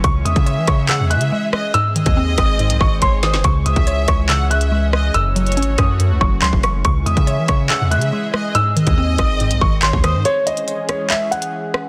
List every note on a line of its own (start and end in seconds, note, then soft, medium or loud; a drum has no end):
0.00 0.88 C#3 loud
0.00 1.71 E3 medium
0.00 5.11 G#3 medium
0.00 1.71 C#4 medium
0.00 1.72 G#4 loud
0.00 closed hi-hat medium
0.04 0.24 C#2 loud
0.04 0.23 C#6 loud
0.04 kick loud
0.25 0.35 E2 loud
0.25 1.09 G#3 medium
0.25 0.85 E5 medium
0.25 0.65 D#6 medium
0.25 closed hi-hat medium
0.36 0.59 C#3 loud
0.36 kick loud
0.36 closed hi-hat soft
0.46 0.67 C#5 medium
0.46 closed hi-hat medium
0.57 0.67 E3 loud
0.67 1.01 C#3 loud
0.67 1.74 C#5 loud
0.67 0.86 C#6 medium
0.67 kick medium
0.67 cross-stick loud
0.67 closed hi-hat medium
0.89 1.74 C#3 medium
0.89 1.09 F#5 medium
0.89 1.08 E6 medium
0.89 clap loud
0.89 closed hi-hat medium
1.00 1.17 E2 loud
1.10 1.31 G#3 medium
1.10 1.50 E5 medium
1.10 1.70 F#6 medium
1.10 closed hi-hat loud
1.16 1.31 C#3 loud
1.21 closed hi-hat medium
1.32 1.52 G#3 medium
1.53 1.74 G#3 medium
1.53 1.73 D#5 medium
1.53 cross-stick loud
1.74 2.58 G#2 loud
1.74 3.43 D#3 medium
1.74 3.43 C4 medium
1.74 5.11 G#4 medium
1.74 2.34 E6 loud
1.74 closed hi-hat medium
1.95 2.79 D#3 medium
1.95 2.98 D#5 loud
1.95 closed hi-hat medium
2.06 2.37 D#2 loud
2.06 kick loud
2.06 closed hi-hat medium
2.17 2.37 C4 loud
2.38 2.71 G#1 loud
2.38 3.44 C4 medium
2.38 2.57 D#6 medium
2.38 kick loud
2.38 cross-stick loud
2.38 closed hi-hat medium
2.59 3.44 G#2 medium
2.59 closed hi-hat medium
2.70 2.80 C2 loud
2.70 closed hi-hat medium
2.80 3.01 G#1 loud
2.80 3.00 D#3 medium
2.80 2.99 C#6 medium
2.80 kick medium
3.01 3.35 G#1 loud
3.01 3.22 D#3 medium
3.01 3.22 C#5 medium
3.01 3.21 C6 medium
3.01 kick medium
3.01 closed hi-hat medium
3.23 3.44 D#3 medium
3.23 3.43 C5 medium
3.23 3.42 D#6 medium
3.23 snare loud
3.23 closed hi-hat medium
3.34 3.44 F#1 loud
3.34 snare loud
3.44 3.65 C#2 loud
3.44 4.28 C#3 loud
3.44 8.51 E3 medium
3.44 8.51 C#4 medium
3.44 3.63 C#6 loud
3.44 kick loud
3.44 closed hi-hat medium
3.66 3.76 C#2 loud
3.66 4.49 G#3 medium
3.66 4.26 E5 medium
3.66 4.06 D#6 medium
3.66 closed hi-hat medium
3.76 4.07 C#2 loud
3.76 kick loud
3.76 closed hi-hat soft
3.87 4.07 C#5 medium
3.87 closed hi-hat medium
4.08 5.11 C#2 loud
4.08 5.15 C#5 medium
4.08 4.27 C#6 medium
4.08 kick loud
4.08 cross-stick medium
4.08 closed hi-hat medium
4.29 5.14 C#3 medium
4.29 4.50 F#5 medium
4.29 4.48 E6 medium
4.29 clap loud
4.29 closed hi-hat medium
4.50 4.71 G#3 medium
4.50 4.91 E5 medium
4.50 5.11 F#6 medium
4.50 closed hi-hat medium
4.61 closed hi-hat medium
4.72 4.92 G#3 medium
4.93 5.15 G#3 medium
4.93 5.14 D#5 medium
4.93 cross-stick loud
5.14 5.59 F#1 loud
5.14 5.98 F#2 loud
5.14 6.83 A3 medium
5.14 6.83 F#4 loud
5.14 5.74 E6 loud
5.14 closed hi-hat medium
5.36 6.20 F#3 medium
5.36 5.96 C#5 medium
5.36 closed hi-hat medium
5.46 closed hi-hat soft
5.52 closed hi-hat medium
5.57 5.77 G#1 loud
5.57 5.77 C#4 loud
5.57 closed hi-hat medium
5.62 closed hi-hat medium
5.78 6.12 F#2 loud
5.78 6.85 C#4 medium
5.78 5.97 D#6 medium
5.78 kick medium
5.78 cross-stick loud
5.78 closed hi-hat medium
6.00 6.85 F#2 medium
6.00 closed hi-hat medium
6.10 6.20 C#2 loud
6.21 6.41 F#1 loud
6.21 6.41 F#3 medium
6.21 6.40 C#6 medium
6.21 kick loud
6.42 6.52 C#2 loud
6.42 6.63 F#3 loud
6.42 6.61 C6 medium
6.42 clap loud
6.42 closed hi-hat medium
6.53 6.83 F#1 loud
6.53 kick medium
6.63 6.85 F#3 medium
6.63 6.82 C#6 medium
6.63 cross-stick loud
6.63 closed hi-hat medium
6.85 7.05 C#2 loud
6.85 7.69 C#3 loud
6.85 10.22 G#3 medium
6.85 10.22 G#4 loud
6.85 7.04 C#6 loud
6.85 kick loud
6.85 closed hi-hat medium
7.06 7.16 E2 loud
7.06 7.90 G#3 medium
7.06 7.66 E5 medium
7.06 7.46 D#6 medium
7.06 closed hi-hat medium
7.17 7.39 C#3 loud
7.17 kick loud
7.17 closed hi-hat soft
7.27 7.48 C#5 medium
7.27 closed hi-hat medium
7.38 7.48 E3 loud
7.48 7.82 C#3 loud
7.48 8.55 C#5 loud
7.48 7.67 C#6 medium
7.48 kick medium
7.48 cross-stick medium
7.48 closed hi-hat medium
7.70 8.55 C#3 medium
7.70 7.90 F#5 medium
7.70 7.89 E6 medium
7.70 clap loud
7.70 closed hi-hat loud
7.80 7.98 E2 loud
7.91 8.12 G#3 medium
7.91 8.31 E5 medium
7.91 8.51 F#6 medium
7.91 closed hi-hat medium
7.96 8.12 C#3 loud
8.02 closed hi-hat medium
8.13 8.33 G#3 medium
8.34 8.55 G#3 medium
8.34 8.54 D#5 medium
8.34 cross-stick loud
8.55 9.39 G#2 loud
8.55 10.23 D#3 medium
8.55 10.23 C4 medium
8.55 9.15 E6 loud
8.55 closed hi-hat medium
8.76 9.60 D#3 medium
8.76 9.79 D#5 loud
8.76 closed hi-hat medium
8.87 9.18 D#2 loud
8.87 kick loud
8.87 closed hi-hat medium
8.98 9.18 C4 loud
9.18 9.52 G#1 loud
9.18 10.25 C4 medium
9.18 9.38 D#6 medium
9.18 kick loud
9.18 cross-stick loud
9.18 closed hi-hat medium
9.40 10.25 G#2 medium
9.40 closed hi-hat medium
9.51 9.61 C2 loud
9.51 closed hi-hat medium
9.61 9.82 G#1 loud
9.61 9.81 D#3 medium
9.61 9.80 C#6 medium
9.61 kick loud
9.82 9.93 G#1 loud
9.82 10.03 D#3 medium
9.82 10.03 C#5 medium
9.82 10.01 C6 medium
9.82 clap loud
9.82 closed hi-hat medium
9.93 10.16 D#2 loud
9.93 kick medium
10.04 10.25 D#3 medium
10.04 10.24 C5 medium
10.04 10.23 D#6 medium
10.04 cross-stick loud
10.04 closed hi-hat medium
10.14 10.25 G#2 loud
10.25 11.89 E3 medium
10.25 11.89 G#3 medium
10.25 11.89 C#4 medium
10.25 11.89 G#4 loud
10.25 10.44 C#5 loud
10.25 closed hi-hat medium
10.47 10.87 D#5 medium
10.47 closed hi-hat medium
10.57 closed hi-hat soft
10.68 closed hi-hat medium
10.89 11.08 C#5 medium
10.89 cross-stick medium
10.89 closed hi-hat medium
11.10 11.29 E5 medium
11.10 clap loud
11.10 closed hi-hat medium
11.31 11.89 F#5 medium
11.31 closed hi-hat medium
11.42 closed hi-hat medium
11.74 cross-stick loud